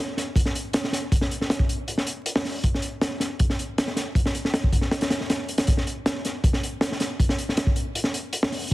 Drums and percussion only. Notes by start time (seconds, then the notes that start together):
0.17 snare, closed hi-hat
0.36 kick, closed hi-hat
0.45 snare
0.55 closed hi-hat
0.73 snare, closed hi-hat
0.84 snare
0.92 snare, closed hi-hat
1.12 kick, closed hi-hat
1.21 snare
1.31 closed hi-hat
1.41 snare
1.50 snare, closed hi-hat
1.59 kick
1.69 closed hi-hat
1.88 closed hi-hat
1.98 snare
2.07 closed hi-hat
2.26 closed hi-hat
2.36 snare
2.45 snare, open hi-hat
2.64 kick, closed hi-hat
2.74 snare
2.82 closed hi-hat
3.01 snare, closed hi-hat
3.20 snare, closed hi-hat
3.39 kick, closed hi-hat
3.50 snare
3.59 closed hi-hat
3.78 snare, closed hi-hat
3.87 snare
3.96 snare, closed hi-hat
4.15 kick, closed hi-hat
4.26 snare
4.35 closed hi-hat
4.45 snare
4.54 snare, closed hi-hat
4.64 kick
4.73 kick, closed hi-hat
4.81 snare
4.91 snare, closed hi-hat
5.01 snare, closed hi-hat
5.10 snare, closed hi-hat
5.21 snare
5.30 snare, closed hi-hat
5.48 closed hi-hat
5.58 snare, closed hi-hat
5.67 kick, closed hi-hat
5.77 snare
5.87 closed hi-hat
6.06 snare, closed hi-hat
6.25 snare, closed hi-hat
6.44 kick, closed hi-hat
6.53 snare
6.63 closed hi-hat
6.81 snare, closed hi-hat
6.92 snare
7.00 snare, closed hi-hat
7.20 kick, closed hi-hat
7.29 snare
7.38 closed hi-hat
7.49 snare
7.57 snare, closed hi-hat
7.67 kick
7.76 closed hi-hat
7.95 closed hi-hat
8.04 snare
8.14 closed hi-hat
8.33 closed hi-hat
8.43 snare
8.52 snare, open hi-hat